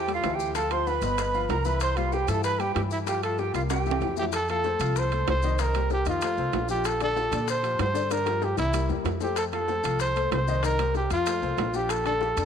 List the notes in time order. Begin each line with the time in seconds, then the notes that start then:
Already playing: E2 G4 G5
0.08 G3 G4 A4, high timbale, maracas
0.13 F4 F5
0.23 D2 E3 E4 E5, high bongo, low bongo, high timbale, low timbale, maracas
0.34 G4 G5
0.39 high bongo, maracas
0.55 F3 F4 A4 F5 A5, high bongo, high timbale, maracas
0.71 F3 F4 C5 F5 C6, high bongo, high timbale, maracas
0.87 B4 B5, high bongo, low timbale, maracas
1.01 G1 B3 B4 D#5, high bongo, high timbale, maracas
1.18 B3 B4 D#5, high bongo, high timbale, maracas
1.34 F3 F4 F5, maracas
1.49 C2 A#4 A#5, high bongo, low bongo, high timbale, low timbale, maracas
1.65 E3 E4 B4 E5 B5, high bongo, maracas
1.80 C5 C6, high bongo, high timbale, maracas
1.97 G3 F4 G4 B4 F5, high bongo, high timbale, maracas
2.12 G4 G5, high bongo, low timbale, maracas
2.28 G2 E3 E4 A4 E5 A5, high bongo, high timbale, maracas
2.44 B4 B5, high bongo, maracas
2.59 G3 G4 B4 G5, high timbale, maracas
2.75 G2 E3 E4 G4 E5 G5, high bongo, low bongo, high timbale, low timbale, maracas
2.91 E4 E5, high bongo, maracas
3.06 F3 F4 G4 F5 G5, high bongo, high timbale, maracas
3.22 F3 F4 A4 F5 A5, high bongo, high timbale, maracas
3.38 G4 G5, high bongo, low timbale, maracas
3.54 C2 G3 F4 G4 A#4 F5, high bongo, high timbale, maracas
3.70 G3 G4 A#4 G5, high bongo, high timbale, maracas
3.86 E3 E4 E5, maracas
3.91 high timbale
4.01 F2, high bongo, low bongo, low timbale, maracas
4.17 E3 E4 G4 E5, high bongo, maracas
4.22 low timbale
4.32 A4, high bongo, high timbale, maracas
4.48 F3 F4 A4 F5, high bongo, high timbale, maracas
4.64 A3 A4 C5, high bongo, low timbale, maracas
4.80 C2 F3 F4 F5, high bongo, high timbale, maracas
4.96 C5, high bongo, maracas
5.12 A3 A4 C5, high timbale, maracas
5.27 C2 C5, high bongo, low bongo, high timbale, low timbale, maracas
5.42 D#3 D#4 D#5, high bongo, maracas
5.59 D#3 D#4 A#4 D#5, high bongo, high timbale, maracas
5.74 G3 G4 A#4, high bongo, high timbale, maracas
5.90 G4, high bongo, low timbale, maracas
6.05 F2 D#3 D#4 F4 D#5, high bongo, high timbale, maracas
6.21 A3 A4 C5, high bongo, high timbale, maracas
6.37 C2 A3 A4 C5, maracas
6.53 A#1, high bongo, low bongo, high timbale, low timbale, maracas
6.69 F3 F4 G4, high bongo, maracas
6.85 A4, high bongo, high timbale, maracas
7.00 D3 D4 A4 D5, high bongo, high timbale, maracas
7.16 F3 F4 G4, high bongo, low timbale, maracas
7.31 A#2 D3 D4 D5, high bongo, high timbale, maracas
7.48 C5, high bongo, maracas
7.63 F3 F4 G4, high timbale, maracas
7.79 G2 C5, high bongo, low bongo, high timbale, low timbale, maracas
7.94 D3 D4 D5, high bongo, maracas
8.10 D3 D4 A#4 D5, high bongo, high timbale, maracas
8.25 F3 F4 G4, high bongo, high timbale, maracas
8.42 G4, high bongo, low timbale, maracas
8.57 C2 E3 E4 E5, low bongo, high timbale, maracas
8.73 G3 G4 A#4, high timbale, maracas
8.89 E2 G3 G4 A#4, low bongo, maracas
9.04 F2, low bongo, high timbale, low timbale, maracas
9.21 A3 G4 A4 C5, low bongo, maracas
9.36 A4, high bongo, high timbale, maracas
9.52 F3 F4 A4 F5, high bongo, high timbale, maracas
9.68 A3 A4 C5, high bongo, low timbale, maracas
9.83 C2 F3 F4 F5, high bongo, high timbale, maracas
9.99 C5, high bongo, maracas
10.15 A3 A4 C5, high timbale, maracas
10.31 C2 C5, high bongo, low bongo, high timbale, low timbale, maracas
10.47 D#3 D#4 D#5, high bongo, maracas
10.63 D#3 D#4 A#4 D#5, high bongo, high timbale, maracas
10.79 G3 G4 A#4, high bongo, high timbale, maracas
10.94 G4, high bongo, low timbale, maracas
11.10 F2 F3 F4 F5, high bongo, high timbale, maracas
11.26 A3 A4 C5, high bongo, high timbale, maracas
11.42 C2 A3 A4 C5, maracas
11.58 A#1, high bongo, low bongo, high timbale, low timbale, maracas
11.74 F3 F4 G4, high bongo, maracas
11.89 A4, high bongo, high timbale, maracas
12.05 D3 D4 A4 D5, high bongo, high timbale, maracas
12.20 F3 F4 G4, high bongo, low timbale, maracas
12.37 F2 D3 D4 D5, high bongo, high timbale, maracas